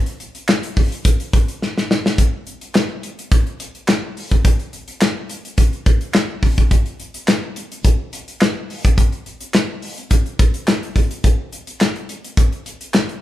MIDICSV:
0, 0, Header, 1, 2, 480
1, 0, Start_track
1, 0, Tempo, 566038
1, 1852, Time_signature, 4, 2, 24, 8
1, 11207, End_track
2, 0, Start_track
2, 0, Title_t, "Drums"
2, 54, Note_on_c, 9, 42, 54
2, 138, Note_off_c, 9, 42, 0
2, 170, Note_on_c, 9, 42, 62
2, 255, Note_off_c, 9, 42, 0
2, 296, Note_on_c, 9, 42, 63
2, 380, Note_off_c, 9, 42, 0
2, 409, Note_on_c, 9, 39, 100
2, 415, Note_on_c, 9, 38, 115
2, 493, Note_off_c, 9, 39, 0
2, 500, Note_off_c, 9, 38, 0
2, 536, Note_on_c, 9, 42, 55
2, 621, Note_off_c, 9, 42, 0
2, 649, Note_on_c, 9, 46, 72
2, 652, Note_on_c, 9, 36, 92
2, 734, Note_off_c, 9, 46, 0
2, 737, Note_off_c, 9, 36, 0
2, 781, Note_on_c, 9, 42, 59
2, 866, Note_off_c, 9, 42, 0
2, 889, Note_on_c, 9, 42, 105
2, 890, Note_on_c, 9, 36, 109
2, 974, Note_off_c, 9, 42, 0
2, 975, Note_off_c, 9, 36, 0
2, 1017, Note_on_c, 9, 42, 54
2, 1102, Note_off_c, 9, 42, 0
2, 1130, Note_on_c, 9, 42, 84
2, 1131, Note_on_c, 9, 36, 113
2, 1215, Note_off_c, 9, 42, 0
2, 1216, Note_off_c, 9, 36, 0
2, 1258, Note_on_c, 9, 42, 50
2, 1343, Note_off_c, 9, 42, 0
2, 1377, Note_on_c, 9, 38, 61
2, 1462, Note_off_c, 9, 38, 0
2, 1505, Note_on_c, 9, 38, 71
2, 1590, Note_off_c, 9, 38, 0
2, 1618, Note_on_c, 9, 38, 102
2, 1703, Note_off_c, 9, 38, 0
2, 1745, Note_on_c, 9, 38, 100
2, 1830, Note_off_c, 9, 38, 0
2, 1851, Note_on_c, 9, 36, 98
2, 1852, Note_on_c, 9, 42, 98
2, 1936, Note_off_c, 9, 36, 0
2, 1937, Note_off_c, 9, 42, 0
2, 2091, Note_on_c, 9, 42, 52
2, 2176, Note_off_c, 9, 42, 0
2, 2216, Note_on_c, 9, 42, 55
2, 2301, Note_off_c, 9, 42, 0
2, 2329, Note_on_c, 9, 39, 87
2, 2335, Note_on_c, 9, 38, 113
2, 2414, Note_off_c, 9, 39, 0
2, 2420, Note_off_c, 9, 38, 0
2, 2572, Note_on_c, 9, 42, 73
2, 2657, Note_off_c, 9, 42, 0
2, 2704, Note_on_c, 9, 42, 58
2, 2789, Note_off_c, 9, 42, 0
2, 2812, Note_on_c, 9, 36, 123
2, 2812, Note_on_c, 9, 42, 94
2, 2897, Note_off_c, 9, 36, 0
2, 2897, Note_off_c, 9, 42, 0
2, 2940, Note_on_c, 9, 42, 35
2, 3024, Note_off_c, 9, 42, 0
2, 3052, Note_on_c, 9, 42, 87
2, 3137, Note_off_c, 9, 42, 0
2, 3179, Note_on_c, 9, 42, 49
2, 3264, Note_off_c, 9, 42, 0
2, 3289, Note_on_c, 9, 39, 94
2, 3295, Note_on_c, 9, 38, 120
2, 3374, Note_off_c, 9, 39, 0
2, 3380, Note_off_c, 9, 38, 0
2, 3536, Note_on_c, 9, 46, 74
2, 3621, Note_off_c, 9, 46, 0
2, 3658, Note_on_c, 9, 42, 58
2, 3659, Note_on_c, 9, 36, 90
2, 3743, Note_off_c, 9, 42, 0
2, 3744, Note_off_c, 9, 36, 0
2, 3771, Note_on_c, 9, 36, 115
2, 3771, Note_on_c, 9, 42, 96
2, 3856, Note_off_c, 9, 36, 0
2, 3856, Note_off_c, 9, 42, 0
2, 3896, Note_on_c, 9, 42, 34
2, 3980, Note_off_c, 9, 42, 0
2, 4011, Note_on_c, 9, 42, 56
2, 4096, Note_off_c, 9, 42, 0
2, 4136, Note_on_c, 9, 42, 59
2, 4220, Note_off_c, 9, 42, 0
2, 4249, Note_on_c, 9, 39, 101
2, 4255, Note_on_c, 9, 38, 116
2, 4334, Note_off_c, 9, 39, 0
2, 4340, Note_off_c, 9, 38, 0
2, 4490, Note_on_c, 9, 42, 80
2, 4575, Note_off_c, 9, 42, 0
2, 4622, Note_on_c, 9, 42, 57
2, 4706, Note_off_c, 9, 42, 0
2, 4729, Note_on_c, 9, 42, 105
2, 4731, Note_on_c, 9, 36, 112
2, 4814, Note_off_c, 9, 42, 0
2, 4816, Note_off_c, 9, 36, 0
2, 4858, Note_on_c, 9, 42, 35
2, 4943, Note_off_c, 9, 42, 0
2, 4971, Note_on_c, 9, 42, 83
2, 4972, Note_on_c, 9, 36, 110
2, 5056, Note_off_c, 9, 42, 0
2, 5057, Note_off_c, 9, 36, 0
2, 5095, Note_on_c, 9, 42, 47
2, 5180, Note_off_c, 9, 42, 0
2, 5206, Note_on_c, 9, 39, 94
2, 5212, Note_on_c, 9, 38, 110
2, 5291, Note_off_c, 9, 39, 0
2, 5297, Note_off_c, 9, 38, 0
2, 5450, Note_on_c, 9, 36, 85
2, 5453, Note_on_c, 9, 46, 74
2, 5535, Note_off_c, 9, 36, 0
2, 5537, Note_off_c, 9, 46, 0
2, 5579, Note_on_c, 9, 36, 96
2, 5579, Note_on_c, 9, 42, 55
2, 5663, Note_off_c, 9, 42, 0
2, 5664, Note_off_c, 9, 36, 0
2, 5691, Note_on_c, 9, 36, 106
2, 5691, Note_on_c, 9, 42, 84
2, 5776, Note_off_c, 9, 36, 0
2, 5776, Note_off_c, 9, 42, 0
2, 5815, Note_on_c, 9, 42, 37
2, 5900, Note_off_c, 9, 42, 0
2, 5932, Note_on_c, 9, 42, 56
2, 6017, Note_off_c, 9, 42, 0
2, 6057, Note_on_c, 9, 42, 65
2, 6141, Note_off_c, 9, 42, 0
2, 6170, Note_on_c, 9, 39, 90
2, 6176, Note_on_c, 9, 38, 115
2, 6255, Note_off_c, 9, 39, 0
2, 6261, Note_off_c, 9, 38, 0
2, 6412, Note_on_c, 9, 42, 79
2, 6497, Note_off_c, 9, 42, 0
2, 6544, Note_on_c, 9, 42, 60
2, 6628, Note_off_c, 9, 42, 0
2, 6652, Note_on_c, 9, 42, 102
2, 6653, Note_on_c, 9, 36, 112
2, 6737, Note_off_c, 9, 42, 0
2, 6738, Note_off_c, 9, 36, 0
2, 6893, Note_on_c, 9, 42, 84
2, 6978, Note_off_c, 9, 42, 0
2, 7021, Note_on_c, 9, 42, 52
2, 7106, Note_off_c, 9, 42, 0
2, 7131, Note_on_c, 9, 39, 93
2, 7137, Note_on_c, 9, 38, 108
2, 7216, Note_off_c, 9, 39, 0
2, 7222, Note_off_c, 9, 38, 0
2, 7379, Note_on_c, 9, 46, 70
2, 7463, Note_off_c, 9, 46, 0
2, 7502, Note_on_c, 9, 36, 106
2, 7503, Note_on_c, 9, 42, 60
2, 7587, Note_off_c, 9, 36, 0
2, 7588, Note_off_c, 9, 42, 0
2, 7613, Note_on_c, 9, 36, 109
2, 7614, Note_on_c, 9, 42, 87
2, 7698, Note_off_c, 9, 36, 0
2, 7698, Note_off_c, 9, 42, 0
2, 7737, Note_on_c, 9, 42, 36
2, 7822, Note_off_c, 9, 42, 0
2, 7854, Note_on_c, 9, 42, 53
2, 7939, Note_off_c, 9, 42, 0
2, 7976, Note_on_c, 9, 42, 58
2, 8061, Note_off_c, 9, 42, 0
2, 8088, Note_on_c, 9, 39, 91
2, 8095, Note_on_c, 9, 38, 106
2, 8173, Note_off_c, 9, 39, 0
2, 8179, Note_off_c, 9, 38, 0
2, 8331, Note_on_c, 9, 46, 79
2, 8415, Note_off_c, 9, 46, 0
2, 8461, Note_on_c, 9, 42, 55
2, 8546, Note_off_c, 9, 42, 0
2, 8570, Note_on_c, 9, 42, 97
2, 8572, Note_on_c, 9, 36, 106
2, 8655, Note_off_c, 9, 42, 0
2, 8657, Note_off_c, 9, 36, 0
2, 8700, Note_on_c, 9, 42, 33
2, 8785, Note_off_c, 9, 42, 0
2, 8813, Note_on_c, 9, 42, 77
2, 8814, Note_on_c, 9, 36, 117
2, 8897, Note_off_c, 9, 42, 0
2, 8899, Note_off_c, 9, 36, 0
2, 8938, Note_on_c, 9, 42, 57
2, 9023, Note_off_c, 9, 42, 0
2, 9051, Note_on_c, 9, 39, 91
2, 9057, Note_on_c, 9, 38, 117
2, 9136, Note_off_c, 9, 39, 0
2, 9142, Note_off_c, 9, 38, 0
2, 9184, Note_on_c, 9, 42, 34
2, 9268, Note_off_c, 9, 42, 0
2, 9291, Note_on_c, 9, 36, 92
2, 9297, Note_on_c, 9, 42, 76
2, 9376, Note_off_c, 9, 36, 0
2, 9382, Note_off_c, 9, 42, 0
2, 9420, Note_on_c, 9, 42, 57
2, 9504, Note_off_c, 9, 42, 0
2, 9532, Note_on_c, 9, 36, 107
2, 9532, Note_on_c, 9, 42, 91
2, 9617, Note_off_c, 9, 36, 0
2, 9617, Note_off_c, 9, 42, 0
2, 9773, Note_on_c, 9, 42, 63
2, 9858, Note_off_c, 9, 42, 0
2, 9898, Note_on_c, 9, 42, 63
2, 9983, Note_off_c, 9, 42, 0
2, 10011, Note_on_c, 9, 39, 88
2, 10017, Note_on_c, 9, 38, 102
2, 10096, Note_off_c, 9, 39, 0
2, 10102, Note_off_c, 9, 38, 0
2, 10139, Note_on_c, 9, 42, 34
2, 10224, Note_off_c, 9, 42, 0
2, 10253, Note_on_c, 9, 42, 74
2, 10338, Note_off_c, 9, 42, 0
2, 10383, Note_on_c, 9, 42, 60
2, 10468, Note_off_c, 9, 42, 0
2, 10493, Note_on_c, 9, 36, 113
2, 10493, Note_on_c, 9, 42, 93
2, 10577, Note_off_c, 9, 36, 0
2, 10578, Note_off_c, 9, 42, 0
2, 10621, Note_on_c, 9, 42, 33
2, 10705, Note_off_c, 9, 42, 0
2, 10736, Note_on_c, 9, 42, 71
2, 10821, Note_off_c, 9, 42, 0
2, 10861, Note_on_c, 9, 42, 54
2, 10945, Note_off_c, 9, 42, 0
2, 10971, Note_on_c, 9, 39, 99
2, 10977, Note_on_c, 9, 38, 119
2, 11056, Note_off_c, 9, 39, 0
2, 11062, Note_off_c, 9, 38, 0
2, 11102, Note_on_c, 9, 42, 31
2, 11186, Note_off_c, 9, 42, 0
2, 11207, End_track
0, 0, End_of_file